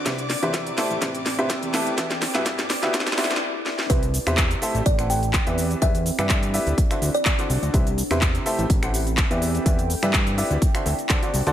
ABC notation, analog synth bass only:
X:1
M:4/4
L:1/16
Q:"Swing 16ths" 1/4=125
K:Em
V:1 name="Analog synth bass" clef=bass
C,,2 z E,,2 z2 A,,, A,,,4 z E,,2 z | E,,2 z G,,3 z D,, z8 | C,,2 z E,,2 z2 A,,, A,,,4 z E,,2 z | E,,2 z G,,3 z D,, z2 D,, z3 C,, D,, |
C,,2 z E,,2 z2 A,,, A,,,4 z E,,2 z | E,,2 z G,,3 z D,, z2 D,, z3 C,, D,, |]